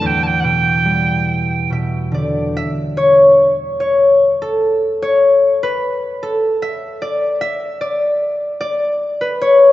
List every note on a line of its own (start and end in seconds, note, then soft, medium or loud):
0.00 2.58 E2 soft
0.00 0.60 A3 soft
0.05 0.23 G5 medium
0.22 0.40 G5 medium
0.22 0.27 A5 medium
0.39 0.44 F#5 medium
0.39 1.70 G5 medium
0.44 1.69 B2 soft
0.85 2.16 G3 soft
1.70 2.16 B2 soft
1.70 2.56 E5 medium
2.12 2.58 D3 soft
2.12 3.03 D5 medium
2.57 2.67 E5 medium
2.97 3.80 C#5 medium
3.80 5.02 C#5 medium
4.42 6.22 A4 medium
5.02 6.94 C#5 medium
5.63 7.68 B4 medium
6.23 8.42 A4 medium
6.62 7.41 E5 medium
7.02 7.80 D5 medium
7.41 9.13 E5 medium
7.81 8.60 D5 medium
8.61 9.47 D5 medium
9.21 9.72 B4 medium
9.41 9.72 C#5 medium